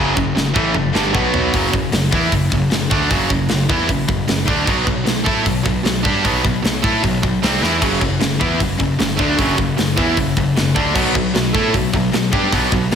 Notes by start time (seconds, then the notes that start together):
Already playing: F#1 F#2 C#3 F#3
0.15 F#1 F#2 C#3, kick
0.35 F#1 F#2 C#3, snare
0.54 A1 A2 E3 A3, kick
0.73 F#1 F#2 C#3, mid tom
0.93 G1 G2 D3 G3, snare
1.13 B1 B2 F#3 B3, kick
1.34 floor tom
1.53 F#1 F#2 C#3 F#3, kick, open hi-hat
1.72 F#1 F#2 C#3, kick
1.91 F#1 F#2 C#3, snare, open hi-hat
2.11 E2 E3 B3 E4, kick
2.31 F#1 F#2 C#3, kick, open hi-hat
2.50 F#1 F#2 C#3, kick
2.70 F#1 F#2 C#3, snare, open hi-hat
2.90 D2 D3 A3 D4, kick
3.09 F#1 F#2 C#3 F#3, kick, open hi-hat
3.30 F#1 F#2 C#3, kick
3.49 F#1 F#2 C#3, snare, open hi-hat
3.69 E2 E3 B3 E4, kick
3.89 F#1 F#2 C#3, kick, open hi-hat
4.08 F#1 F#2 C#3, kick
4.28 F#1 F#2 C#3, snare, open hi-hat
4.45 D2 D3 A3 D4, kick
4.65 B1 B2 F#3 B3, kick, crash
4.85 B1 B2 F#3, kick
5.04 B1 B2 F#3, snare, open hi-hat
5.25 A2 A3 E4 A4, kick
5.45 B1 B2 F#3, kick, open hi-hat
5.64 B1 B2 F#3, kick
5.83 B1 B2 F#3, snare, open hi-hat
6.05 G2 G3 D4 G4, kick
6.25 B1 B2 F#3 B3, kick, open hi-hat
6.44 B1 B2 F#3, kick
6.64 B1 B2 F#3, snare, open hi-hat
6.83 A2 A3 E4 A4, kick
7.03 B1 B2 F#3, kick, open hi-hat
7.23 B1 B2 F#3, kick
7.43 C2 C3 G3 C4, snare, open hi-hat
7.62 E2 E3 B3 E4, snare
7.82 F#1 F#2 C#3 F#3, kick, open hi-hat, crash
8.01 F#1 F#2 C#3, kick
8.21 F#1 F#2 C#3, snare, open hi-hat
8.40 E2 E3 B3 E4, kick
8.59 F#1 F#2 C#3, kick, open hi-hat
8.78 F#1 F#2 C#3, kick
8.99 F#1 F#2 C#3, snare, open hi-hat
9.18 D2 D3 A3 D4, kick
9.38 F#1 F#2 C#3 F#3, kick, open hi-hat
9.58 F#1 F#2 C#3, kick
9.78 F#1 F#2 C#3, snare, open hi-hat
9.98 E2 E3 B3 E4, kick
10.17 F#1 F#2 C#3, kick, open hi-hat
10.37 F#1 F#2 C#3, kick
10.56 F#1 F#2 C#3, snare, open hi-hat
10.76 D2 D3 A3 D4, kick
10.95 B1 B2 F#3 B3, kick, crash
11.15 B1 B2 F#3, kick
11.34 B1 B2 F#3, snare, open hi-hat
11.54 A2 A3 E4 A4, kick
11.74 B1 B2 F#3, kick, open hi-hat
11.93 B1 B2 F#3, kick
12.12 B1 B2 F#3, snare, open hi-hat
12.32 G2 G3 D4 G4, kick
12.51 B1 B2 F#3 B3, kick, open hi-hat
12.71 B1 B2 F#3, kick
12.91 B1 B2, open hi-hat